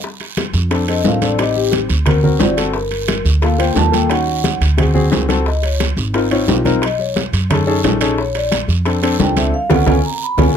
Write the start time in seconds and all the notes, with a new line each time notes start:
0.03 high bongo, high conga, long guiro
0.20 high bongo, high conga, high timbale
0.37 high bongo, high conga, high timbale, low timbale, short guiro
0.53 F2, high bongo, high conga, short guiro
0.71 C4 D4 A4, high bongo, high conga, high timbale, long guiro
0.88 C4 D4 A4 D#5, high bongo, high conga, high timbale
1.04 A1 C4 D4 A4 F5, high bongo, low bongo, high conga, low timbale, short guiro
1.21 C4 D4 A4 D5, high conga, high timbale, short guiro
1.38 C4 D#4 G4 D#5, high bongo, high conga, high timbale, long guiro
1.55 G4, high bongo, high conga
1.72 high bongo, high conga, high timbale, low timbale, short guiro
1.89 D2, high bongo, high conga, high timbale, short guiro
2.06 C4 F#4 A#4, high bongo, high conga, low conga, high timbale, long guiro
2.23 C4 F#4 A#4 C5, high bongo, high conga, low conga
2.39 G1 C4 F#4 C5 D5, high bongo, low bongo, high conga, high timbale, low timbale, short guiro
2.56 C4 F#4 A4 C5, high conga, high timbale, short guiro
2.74 A#4, high bongo, high conga, long guiro
2.91 high bongo, high conga, high timbale
3.08 high bongo, high conga, high timbale, low timbale, short guiro
3.25 D2, high bongo, high conga, short guiro
3.42 A#3 F4 A4 F5, high bongo, high conga, high timbale, long guiro
3.58 A#3 F4 C5 G5, high bongo, high conga, high timbale
3.75 D#2 A#3 F4 A4 A5, high bongo, low bongo, high conga, low timbale, short guiro
3.92 A#3 F4 A4 G5, high conga, high timbale, short guiro
4.10 C#4 D#4 F#4 F#5, high bongo, high conga, high timbale, long guiro
4.27 high bongo, high conga
4.44 high bongo, high conga, high timbale, low timbale, short guiro
4.61 D2, high bongo, high conga, high timbale, short guiro
4.77 C4 F#4 G#4, high bongo, high conga, low conga, high timbale, long guiro
4.94 C4 F#4 G#4, high conga, low conga
5.10 C#2 C4 F#4 G#4, low bongo, high conga, high timbale, low timbale, short guiro
5.28 C4 F#4 A4, low bongo, high conga, high timbale, short guiro
5.46 D#5, high bongo, high conga, long guiro
5.63 C#5, high bongo, high conga, high timbale
5.80 high bongo, high conga, high timbale, low timbale, short guiro
5.97 G#1, high bongo, high conga, short guiro
6.14 C4 D#4 F4 A#4, high bongo, high conga, high timbale, long guiro
6.31 C4 D#4 F4 C#5, high bongo, high conga, high timbale
6.47 B1 C4 D#4 F4 G4, high bongo, low bongo, high conga, low timbale, short guiro
6.65 C4 D#4 F4 A#4, high conga, high timbale, short guiro
6.82 D#5, high bongo, high conga, high timbale, long guiro
6.99 C#5, high bongo, high conga
7.16 high bongo, high conga, high timbale, low timbale, short guiro
7.33 F#2, high bongo, high conga, high timbale, short guiro
7.50 C#4 D#4 G#4 A4, high bongo, high conga, low conga, high timbale, long guiro
7.67 C#4 D#4 G#4 A4, high bongo
7.83 A#1 C#4 D#4 G#4 A4, high bongo, low bongo, high conga, high timbale, low timbale, short guiro
8.01 C#4 D#4 G#4 A4, high conga, high timbale, short guiro
8.18 C#5, high bongo, high conga, long guiro
8.35 D5, high bongo, high conga, high timbale
8.52 high bongo, high conga, high timbale, low timbale, short guiro
8.68 F2, high bongo, high conga, short guiro
8.86 C4 D4 A4, high bongo, high conga, high timbale, long guiro
9.02 C4 D4 A4, high bongo, high conga, high timbale
9.19 C#2 C4 D4 A4 G5, high bongo, low bongo, high conga, low timbale, short guiro
9.36 C4 D4 A4 E5, high conga, high timbale, short guiro
9.54 F5
9.70 C#2 B3 C#4 F4 F#5, high bongo, low conga, high timbale, long guiro
9.86 C#2 B3 C#4 F4 G#5, high bongo, low conga, high timbale, long guiro
10.05 A#5
10.23 B5
10.37 C#2 B3 C#4 F4 G#5, high bongo, low conga, high timbale, long guiro